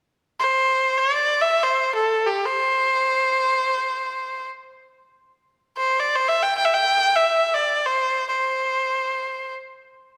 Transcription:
erhu
0.40 C5
0.98 C#5
1.15 D5
1.41 E5
1.63 C5
1.95 A4
2.26 G4
2.45 C5
5.77 C5
6.00 D5
6.15 C5
6.28 E5
6.43 G5
6.58 G5
6.65 E5
6.74 G5
7.15 E5
7.54 D5
7.85 C5
8.29 C5

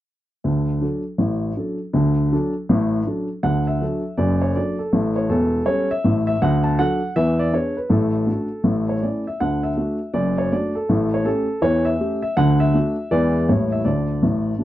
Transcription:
upright piano
0.44 D2 D3
0.81 F#3 D4 A4
1.18 A1 A2
1.57 F#3 D4 A4
1.93 D2 D3
2.32 F#3 D4 A4
2.69 A1 A2
3.06 F#3 D4 A4
3.43 D2 D3 F#5
3.67 E5
3.81 F#3 D4 A4
4.18 F#1 F#2 D5
4.42 C#5
4.55 F#3 D4 A4 D5
4.79 A4
4.93 A1 A2
5.16 C#5
5.29 E1 E2 A4
5.65 G3 C#4 A4 C#5
5.91 E5
6.04 A1 A2
6.27 E5
6.42 D2 D3 F#5
6.64 A5
6.79 F#3 D4 A4 F#5
7.16 E2 E3 E5
7.39 D5
7.53 B3 D4 G#4 C#5
7.77 B4
7.90 A1 A2 A4
8.27 A3 D4 F#4
8.64 A1 A2
8.89 C#5
9.02 A3 C#4 E4 D5
9.27 E5
9.40 D2 D3 F#5
9.63 E5
9.77 A3 D4 F#4
10.14 F#1 F#2 D5
10.38 C#5
10.52 A3 D4 F#4 D5
10.75 A4
10.89 A1 A2
11.14 C#5
11.25 A3 C#4 G4 A4
11.62 E2 E3 C#5
11.85 E5
12.00 A3 C#4 G4
12.23 E5
12.37 D2 D3 F#5
12.60 E5
12.74 A3 D4 F#4
13.11 E2 E3 G#3 B3 E4 D5
13.49 A1 A2 G3 A#3 E4 C#5
13.72 E5
13.85 D2 D3 D5
14.22 A1 A2
14.59 F#3 A3 D4

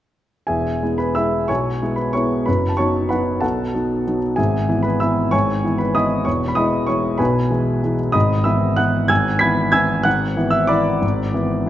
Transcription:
grand piano
0.47 E1 E2 G#4 E5 G#5
0.82 G#3 B3 E4
0.98 B4 B5
1.15 G#3 B3 E4 E5 B5 E6
1.48 B1 B2 C#5 G#5 C#6
1.82 G#3 B3 E4
1.96 B4 B5
2.13 G#3 B3 E4 C#5 C#6
2.46 F#1 F#2 B4 B5
2.69 A5
2.77 F#3 B3 D#4 C#5 A5 C#6
3.09 F#3 B3 D#4 B4 F#5 B5
3.41 B1 B2 A4 F#5 A5
3.74 F#3 B3 D#4
4.07 F#3 B3 D#4
4.36 G#1 G#2 G#4 E5 G#5
4.69 E3 B3 E4
4.83 B4 B5
5.00 E3 B3 E4 E5 B5 E6
5.31 G#1 G#2 C#5 G#5 C#6
5.64 E3 B3 E4
5.78 B4 B5
5.95 E3 B3 E4 D#5 B5 D#6
6.25 E1 E2 C#5 C#6
6.48 B5
6.55 E3 G#3 E4 D#5 B5 D#6
6.87 E3 G#3 E4 C#5 C#6
7.18 B1 B2 B4 G#5 B5
7.50 E3 G#3 E4
7.83 E3 G#3 E4
8.12 G#1 G#2 D#5 B5 D#6
8.44 E3 B3 E4 E5 B5 E6
8.76 E3 B3 E4 F#5 F#6
9.08 G#1 G#2 G#5 E6 G#6
9.39 E3 B3 E4 B5 G#6 B6
9.72 E3 B3 E4 G#5 E6 G#6
10.03 G#1 G#2 F#5 F#6
10.36 E3 B3 E4
10.51 E5 E6
10.67 E3 B3 E4 D5 B5 D6
11.02 G#1 G#2
11.34 E3 B3 E4
11.66 E3

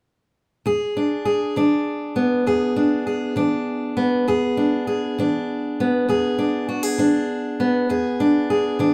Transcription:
steel-string acoustic guitar
0.66 E2 G#4
0.97 D4
1.25 G#4
1.56 E3 D4
2.16 B3
2.47 E2 G#4
2.76 D4
3.07 G#4
3.36 E3 D4
3.97 B3
4.28 E2 G#4
4.57 D4
4.87 G#4
5.18 E3 D4
5.80 B3
6.08 E2 G#4
6.38 D4
6.69 F#4
6.83 G#4
6.98 E3 D4
7.60 B3
7.89 E2 G#4
8.20 D4
8.50 G#4
8.79 E3 D4

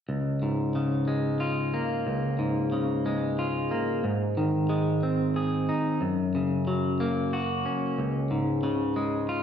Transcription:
clean electric guitar
0.09 C#2
0.42 G#2
0.75 C#3
1.08 G#3
1.40 F4
1.74 A#3
2.07 C#2
2.39 G#2
2.72 C#3
3.06 G#3
3.39 F4
3.71 A#3
4.04 G#2
4.37 D#3
4.69 G#3
5.03 C4
5.36 G#4
5.69 D#4
6.01 F#2
6.35 C#3
6.67 F#3
7.00 A#3
7.33 F#4
7.66 C#4
7.98 C#2
8.31 G#2
8.63 C#3
8.96 G#3
9.29 F4

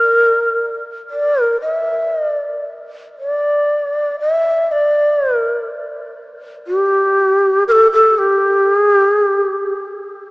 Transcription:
shakuhachi
Already playing: A#4
1.10 D5
1.42 A#4
1.62 E5
2.15 D#5
2.28 D5
3.19 D5
4.20 E5
4.71 D5
5.36 A#4
6.67 G4
7.68 A4 A#4
7.93 A4
8.18 G4
8.76 G#4
8.92 G4
9.09 G#4
9.25 G4

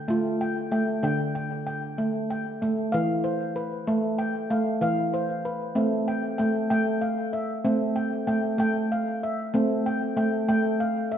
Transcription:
handpan
Already playing: G5
0.08 A3 F4
0.41 G5
0.72 A3 G5
1.03 D3 G5
1.35 G5
1.67 G5
1.98 A3
2.30 G5
2.62 A3
2.92 E3 F5
3.24 C5
3.56 B4
3.87 A3
4.18 G5
4.50 A3 F5
4.81 E3 F5
5.14 C5
5.45 B4
5.75 A3 C4
6.08 G5
6.38 A3 G5
6.70 A3 G5
7.01 F5
7.33 E5
7.65 A3 C4
7.96 G5
8.27 A3 G5
8.58 A3 G5
8.92 F5
9.23 E5
9.54 A3 C4
9.86 G5
10.17 A3 G5
10.48 A3 G5
10.80 F5
11.12 E5

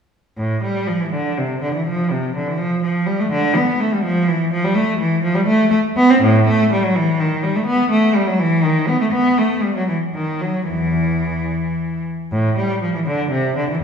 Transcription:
cello
0.38 A2
0.63 G3
0.87 F3
1.00 E3
1.13 D3
1.38 C3
1.62 D3
1.74 E3
1.87 F3
2.11 C3
2.36 D3
2.47 E3
2.58 F3
2.82 F3
3.06 G3
3.20 A3
3.32 D3
3.56 B3
3.80 A3
3.94 G3
4.04 F3
4.28 E3
4.52 F3
4.64 G3
4.75 A3
4.99 E3
5.23 F3
5.34 G3
5.46 A3
5.70 A3
5.96 B3
6.10 C4
6.22 A2
6.48 A3
6.72 G3
6.84 F#3
6.96 E3
7.20 D#3
7.43 G3
7.56 A3
7.66 B3
7.90 A3
8.15 G3
8.27 F#3
8.40 E3
8.64 D#3
8.88 B3
9.01 A3
9.12 B3
9.38 A3
9.63 G3
9.76 F#3
9.88 E3
10.15 D#3
10.41 F#3
10.68 E2 E3
12.32 A2
12.57 G3
12.83 F3
12.95 E3
13.06 D3
13.31 C3
13.57 D3
13.70 E3

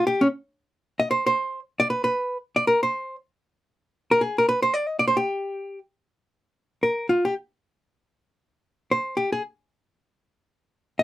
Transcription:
hollow-body jazz guitar
0.07 G4
0.21 C#4
1.00 D#5
1.11 C5
1.27 C5
1.80 D5
1.90 B4
2.04 B4
2.56 D5
2.67 A#4
2.83 C5
4.11 A#4
4.21 G#4
4.38 A#4
4.49 B4
4.62 C5
4.74 D5
4.88 D#5
4.99 D5
5.08 C5
5.17 G4
6.83 A#4
7.09 F4
7.25 G4
8.91 C5
9.17 G4
9.32 G#4
10.99 D#5

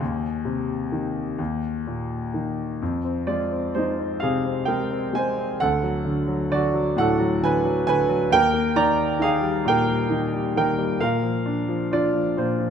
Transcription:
grand piano
Already playing: G#4 C#5 F5 G#5
0.00 D#2
0.45 C3
0.92 D#3
1.38 D#2
1.87 A#2
2.34 D#3
2.82 F2
3.04 C4
3.27 G#3 F4 D5
3.51 C4
3.75 G#3 D#4 C5
3.98 C4
4.20 C3 G#4 F5
4.45 C4
4.65 G#3 A#4 G5
4.91 C4
5.13 G#3 G#5
5.18 C5
5.38 C4
5.60 D2 A4 F#5
5.83 F#3
6.05 D3
6.28 F#3
6.50 D3 F#4 D5
6.73 F#3
6.97 A2 A4 F#5
7.20 F#3
7.41 D3 B4 G#5
7.64 F#3
7.87 D3 B4 G#5
8.09 F#3
8.30 D#2 A#4 G5
8.54 A#3
8.76 D#3 D5 A#5
9.19 D#3 G#4 F5
9.41 G3
9.65 A#2 G5
9.69 A#4
9.89 G3
10.10 D#3
10.34 G3
10.56 D#3 A#4 G5
10.78 G3
11.00 A#2 A#4 F5
11.22 F3
11.46 D4
11.68 F3
11.91 D4 F4 D5
12.13 F3
12.37 A#2 F4 C5
12.59 F3

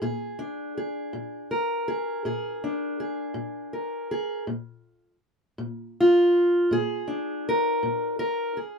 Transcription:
steel-string acoustic guitar
0.02 A#2 G#4
0.39 D4
0.77 G#4
1.13 A#2
1.51 A#4
1.88 G#4
2.25 A#2 G#4
2.64 D4
3.00 G#4
3.34 A#2
3.73 A#4
4.11 G#4
4.47 A#2
5.58 A#2
6.00 F4
6.71 A#2 G#4
7.08 D4
7.49 A#4
7.83 A#2
8.19 A#4
8.57 G#4

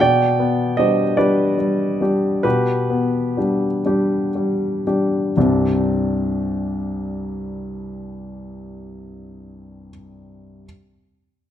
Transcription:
grand piano
0.00 B2 D5 G5
0.39 B3
0.77 G3 D4 G4 C5 D#5
1.17 G3 D4 G4 B4 D5
1.58 G3
2.01 G3 D4 G4
2.43 B2 G4 B4
2.90 B3
3.37 G3 D4 G4
3.86 G3 D4 G4
4.35 G3
4.87 G3 D4 G4
5.37 C2 G2 G3 C4 D4 G4

